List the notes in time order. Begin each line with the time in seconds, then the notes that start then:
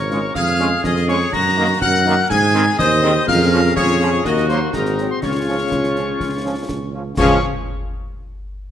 Already playing: G#1 A#4 C#5 C#6
0.10 G#3 C#4 F4, snare
0.34 F2 G#4 F5 F6, concert bass drum, snare
0.47 snare
0.59 G#3 C#4 F4, snare
0.84 F2 G#4 D#5 D#6, concert bass drum, snare
0.96 snare
1.08 G#3 C#4 F4 C#5 C#6, snare
1.33 F#2 F#4 A#5 A#6, concert bass drum, snare, crash
1.57 D#3 A#3 D#4
1.81 F#2 A#4 F#5 F#6, concert bass drum, snare
1.94 snare
2.06 D#3 A#3 D#4, snare
2.30 G#2 G#4 G#5 G#6, concert bass drum, snare
2.43 snare
2.54 D#3 C4 D#4 G#4, snare
2.78 D#2 C5 D#5 D#6, concert bass drum, snare
2.92 snare
3.02 D#3 C4 D#4 G#4, snare
3.27 F2 C#4 F4 G#4 A#4 F5 F6, concert bass drum, snare, crash
3.52 F3 C#4
3.76 F2 C#4 F4 G#4 C#5 C#6, concert bass drum, snare
3.88 snare
4.01 F3 C#4, snare
4.24 D#2 A#3 F#4 A#4 D#5 D#6, concert bass drum, snare
4.37 snare
4.49 F#3 A#3 C5 C6, snare
4.73 G#1 C4 D#4 F#4 G#4 A#4 A#5, concert bass drum, snare
4.86 snare
4.98 F#3 C4, snare
5.10 C5 C6
5.22 C#2 C#4 F4 G#4 C#5 C#6, concert bass drum, snare, crash
5.48 F3 C#4
5.71 C#2, concert bass drum, snare
5.84 snare
5.96 F3 C#4, snare
6.20 C#2, concert bass drum, snare
6.44 F3 C#4
6.69 C#2, concert bass drum, snare
6.93 F3 C#4
7.17 C#2 F3 C#4 F4 G#4 C#5 F5 C#6, concert bass drum, snare, crash